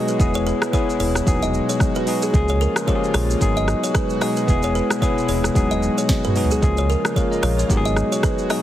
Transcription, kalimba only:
0.09 B4
0.35 C#5
0.47 B4
0.73 C#5
1.00 C#5
1.43 D#5
1.69 C#5
1.96 B4
2.23 G#4
2.50 C#5
2.61 A#4
2.88 C#5
3.15 C#5
3.57 D#5
3.84 C#5
3.95 B4
4.22 D#5
4.37 B4
4.64 C#5
4.75 B4
5.02 C#5
5.29 C#5
5.71 D#5
5.98 C#5
6.25 B4
6.52 G#4
6.78 C#5
6.90 A#4
7.16 C#5
7.43 C#5
7.85 D#5
8.12 C#5
8.24 B4
8.50 D#5

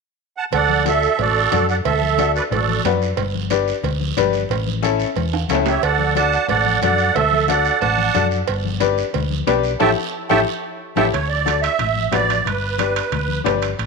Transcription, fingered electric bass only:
0.53 D2
1.19 A1
1.53 F#2
1.86 D2
2.51 A1
2.85 F#2
3.17 G1
3.84 D2
4.17 G1
4.50 A1
5.17 E2
5.50 C#2
5.83 D2
6.50 A1
6.83 F#2
7.16 D2
7.82 A1
8.15 F#2
8.49 G1
9.14 D2
9.47 B1
9.81 A1
10.31 A1
10.97 A1
11.14 D2
11.80 A1
12.13 A1
12.46 G1
13.12 D2
13.45 G1
13.79 A1

